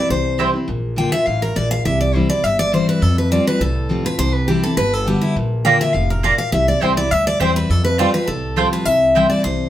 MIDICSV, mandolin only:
0, 0, Header, 1, 2, 480
1, 0, Start_track
1, 0, Key_signature, 0, "major"
1, 0, Tempo, 292255
1, 1123, Time_signature, 4, 2, 24, 8
1, 15915, End_track
2, 0, Start_track
2, 0, Title_t, "Mandolin"
2, 0, Program_c, 0, 25
2, 636, Note_on_c, 0, 60, 93
2, 646, Note_on_c, 0, 64, 90
2, 651, Note_on_c, 0, 72, 94
2, 661, Note_on_c, 0, 79, 88
2, 794, Note_off_c, 0, 60, 0
2, 799, Note_off_c, 0, 64, 0
2, 802, Note_off_c, 0, 72, 0
2, 806, Note_off_c, 0, 79, 0
2, 9277, Note_on_c, 0, 58, 92
2, 9286, Note_on_c, 0, 65, 103
2, 9291, Note_on_c, 0, 74, 90
2, 9297, Note_on_c, 0, 82, 103
2, 9434, Note_off_c, 0, 58, 0
2, 9438, Note_off_c, 0, 65, 0
2, 9440, Note_off_c, 0, 74, 0
2, 9443, Note_off_c, 0, 82, 0
2, 10236, Note_on_c, 0, 58, 91
2, 10244, Note_on_c, 0, 65, 91
2, 10250, Note_on_c, 0, 74, 98
2, 10262, Note_on_c, 0, 82, 99
2, 10393, Note_off_c, 0, 58, 0
2, 10397, Note_off_c, 0, 65, 0
2, 10400, Note_off_c, 0, 74, 0
2, 10406, Note_off_c, 0, 82, 0
2, 11190, Note_on_c, 0, 60, 92
2, 11200, Note_on_c, 0, 64, 84
2, 11208, Note_on_c, 0, 72, 96
2, 11212, Note_on_c, 0, 79, 111
2, 11350, Note_off_c, 0, 60, 0
2, 11355, Note_off_c, 0, 64, 0
2, 11359, Note_off_c, 0, 72, 0
2, 11361, Note_off_c, 0, 79, 0
2, 12147, Note_on_c, 0, 60, 93
2, 12156, Note_on_c, 0, 64, 104
2, 12164, Note_on_c, 0, 72, 92
2, 12169, Note_on_c, 0, 79, 102
2, 12309, Note_off_c, 0, 60, 0
2, 12313, Note_off_c, 0, 64, 0
2, 12317, Note_off_c, 0, 72, 0
2, 12320, Note_off_c, 0, 79, 0
2, 13110, Note_on_c, 0, 57, 100
2, 13119, Note_on_c, 0, 65, 97
2, 13122, Note_on_c, 0, 72, 103
2, 13130, Note_on_c, 0, 79, 101
2, 13270, Note_off_c, 0, 57, 0
2, 13275, Note_off_c, 0, 65, 0
2, 13277, Note_off_c, 0, 72, 0
2, 13280, Note_off_c, 0, 79, 0
2, 14068, Note_on_c, 0, 57, 90
2, 14075, Note_on_c, 0, 65, 104
2, 14083, Note_on_c, 0, 72, 96
2, 14091, Note_on_c, 0, 79, 101
2, 14230, Note_off_c, 0, 57, 0
2, 14233, Note_off_c, 0, 65, 0
2, 14237, Note_off_c, 0, 72, 0
2, 14241, Note_off_c, 0, 79, 0
2, 15029, Note_on_c, 0, 60, 90
2, 15039, Note_on_c, 0, 64, 98
2, 15046, Note_on_c, 0, 72, 101
2, 15053, Note_on_c, 0, 79, 112
2, 15190, Note_off_c, 0, 60, 0
2, 15195, Note_off_c, 0, 64, 0
2, 15199, Note_off_c, 0, 72, 0
2, 15203, Note_off_c, 0, 79, 0
2, 15915, End_track
0, 0, End_of_file